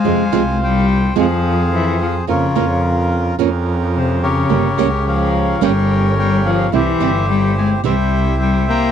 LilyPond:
<<
  \new Staff \with { instrumentName = "Bandoneon" } { \time 4/4 \key f \minor \tempo 4 = 108 << { aes''4 g''4 f''4 e''8 f''8 | des''4 r2 c''8 des''8~ | des''4 f''4 g''4 g''8 f''8 | e''4 g''8 aes''8 g''4 g''8 bes''8 | } \\ { <c'' f''>4 c''4 <aes' c''>2 | <f' bes'>2 r4. <g' bes'>8~ | <g' bes'>4 <bes' des''>4 <bes' des''>2 | <g' c''>2 <c'' e''>4. g''8 | } >> }
  \new Staff \with { instrumentName = "Bandoneon" } { \time 4/4 \key f \minor <c' f' aes'>8 <c' f' c''>4. <c' f' aes'>2 | <des' f' bes'>8 <des' f' bes'>4. <des' f' bes'>2 | <des' g' bes'>8 <des' g' bes'>4. <des' g' bes'>2 | <c' e' g'>8 <c' e' g'>4. <c' e' g'>2 | }
  \new Staff \with { instrumentName = "Nylon-string guitar" } { \time 4/4 \key f \minor <c f aes c' f'>8 <c f aes c' f'>8 r4 <c f aes c' f'>8 r4. | <f bes des' f'>8 <f bes des' f'>8 r4 <f bes des' f'>8 r4. | <g bes des' g'>8 <g bes des' g'>8 r4 <g bes des' g'>8 r4. | <c e g c' e'>8 <c e g c' e'>8 r4 <c e g c' e'>8 r4. | }
  \new Staff \with { instrumentName = "Cello" } { \clef bass \time 4/4 \key f \minor aes4 g4 f4 e8 f8 | des4 r2 c8 des8~ | des4 f4 g4 g8 f8 | e4 g8 aes8 g4 g8 bes8 | }
  \new Staff \with { instrumentName = "Double bass" } { \clef bass \time 4/4 \key f \minor f,8 c,4. f,2 | f,8 f,4. f,2 | g,,8 des,4. g,,2 | c,8 g,,4. c,2 | }
>>